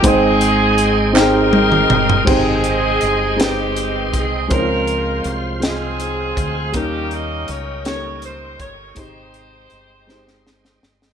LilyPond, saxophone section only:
\new Staff \with { instrumentName = "Saxophone section" } { \time 6/8 \key aes \major \tempo 4. = 54 << { aes'4. bes'4. | aes'4. g'4 aes'8 | bes'4 r8 aes'4. | g'8 ees''8 des''8 des''8 c''8 des''8 |
c''2~ c''8 r8 | } \\ { <c' ees'>4. <ees' g'>4. | <c' ees'>4. <c' ees'>4. | f'4. <c' f'>4. | <bes des'>4. r4. |
<ees' g'>2~ <ees' g'>8 r8 | } >> }